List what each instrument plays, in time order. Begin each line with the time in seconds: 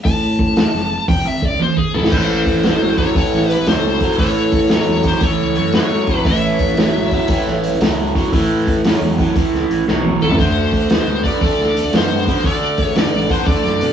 0.05 fingered electric bass A2, lead electric guitar A5, kick, open hi-hat
0.39 kick
0.56 snare, open hi-hat
0.73 fingered electric bass F1, snare
1.08 fingered electric bass E1, lead electric guitar G5, kick, open hi-hat
1.25 fingered electric bass G#1, lead electric guitar E5
1.42 fingered electric bass C#2, lead electric guitar D5, kick
1.59 lead electric guitar C5, high tom
1.77 lead electric guitar G#4, kick
1.94 fingered electric bass C#2, lead electric guitar E4 A4, mid tom
2.04 fingered electric bass G#1, snare
2.11 fingered electric bass A1, overdriven electric guitar A2 E3, lead electric guitar A4 C5, kick, crash
2.46 kick, open hi-hat
2.63 overdriven electric guitar A2 F#3, snare, open hi-hat
2.81 fingered electric bass A1
2.98 overdriven electric guitar A2 F#3, lead electric guitar A4 C#5, kick, open hi-hat
3.15 overdriven electric guitar A2 E3, kick, open hi-hat
3.33 fingered electric bass A1, snare
3.47 lead electric guitar G4 B4, open hi-hat
3.59 fingered electric bass A1
3.66 fingered electric bass C#2, overdriven electric guitar A2 F#3, lead electric guitar A4 C5, snare, open hi-hat
4.00 overdriven electric guitar A2 F#3, kick, open hi-hat
4.18 overdriven electric guitar A2 E3, fingered electric bass A2, lead electric guitar A4 C#5, kick, open hi-hat
4.52 kick, open hi-hat
4.69 overdriven electric guitar A2 F#3, lead electric guitar C#5, snare, open hi-hat
4.73 lead electric guitar A4
4.88 fingered electric bass E2
5.03 overdriven electric guitar A2 F#3, kick, open hi-hat
5.08 lead electric guitar G4 C5
5.21 overdriven electric guitar A2 E3, lead electric guitar A4 C#5, kick, open hi-hat
5.40 fingered electric bass C#2
5.55 fingered electric bass F#2, lead electric guitar A4 C#5, open hi-hat
5.73 overdriven electric guitar A2 F#3, lead electric guitar A4 C#5, snare, open hi-hat
6.07 fingered electric bass F#1, overdriven electric guitar A2 F#3, kick, open hi-hat
6.17 fingered electric bass A1, lead electric guitar B4
6.25 fingered electric bass A1, overdriven electric guitar A2 E3, lead electric guitar C#5 E5, kick, open hi-hat
6.59 kick, open hi-hat
6.77 overdriven electric guitar A2 F#3, snare, open hi-hat
6.94 fingered electric bass A1
7.11 overdriven electric guitar A2 F#3, kick, open hi-hat
7.28 overdriven electric guitar A2 E3, kick, open hi-hat
7.46 fingered electric bass A1, snare
7.63 open hi-hat
7.71 fingered electric bass A1
7.80 fingered electric bass C#2, overdriven electric guitar A2 F#3, snare, open hi-hat
8.15 overdriven electric guitar A2 F#3, kick, open hi-hat
8.32 fingered electric bass A2, overdriven electric guitar A2 E3, kick, open hi-hat
8.67 kick, open hi-hat
8.84 overdriven electric guitar A2 F#3, snare, open hi-hat
9.02 fingered electric bass E2
9.19 overdriven electric guitar A2 F#3, kick, open hi-hat
9.36 overdriven electric guitar A2 E3, kick, open hi-hat
9.53 fingered electric bass C#2, snare
9.70 fingered electric bass A1, open hi-hat
9.87 fingered electric bass B1, overdriven electric guitar A2 F#3, snare
10.05 high tom
10.21 fingered electric bass C#2, overdriven electric guitar A2 F#3, lead electric guitar E4 A4, mid tom
10.31 floor tom
10.38 fingered electric bass D2, overdriven electric guitar D3 A3, lead electric guitar F#4 C5, kick, open hi-hat
10.73 kick, open hi-hat
10.90 overdriven electric guitar D3 B3, snare, open hi-hat
11.06 fingered electric bass D2
11.23 overdriven electric guitar D3 B3, lead electric guitar A4 D5, kick, open hi-hat
11.41 overdriven electric guitar D3 A3, kick, open hi-hat
11.59 fingered electric bass D2, snare
11.77 open hi-hat
11.84 fingered electric bass D2
11.93 fingered electric bass F#2, overdriven electric guitar D3 B3, lead electric guitar F#4 C5, snare, open hi-hat
12.27 overdriven electric guitar D3 B3, kick, open hi-hat
12.44 fingered electric bass D3, overdriven electric guitar D3 A3, lead electric guitar A4 D5, kick, open hi-hat
12.78 lead electric guitar G#4, kick, open hi-hat
12.85 lead electric guitar C#5
12.95 overdriven electric guitar D3 B3, lead electric guitar A4 D5, snare, open hi-hat
13.12 fingered electric bass A1
13.29 overdriven electric guitar D3 B3, lead electric guitar F#4 C5, kick, open hi-hat
13.47 overdriven electric guitar D3 A3, lead electric guitar A4 D5, kick, open hi-hat
13.64 fingered electric bass F#2, snare
13.81 fingered electric bass B2, open hi-hat